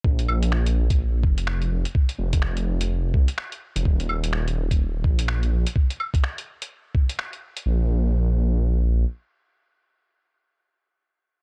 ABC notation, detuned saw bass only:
X:1
M:4/4
L:1/16
Q:"Swing 16ths" 1/4=126
K:Ebdor
V:1 name="Detuned saw bass" clef=bass
B,,,2 B,,,8 F,,,4 F,,, z | z2 F,,,8 C,, z4 F,,, | E,,,2 E,,,8 B,,,4 B,,, z | z16 |
B,,,12 z4 | z16 |]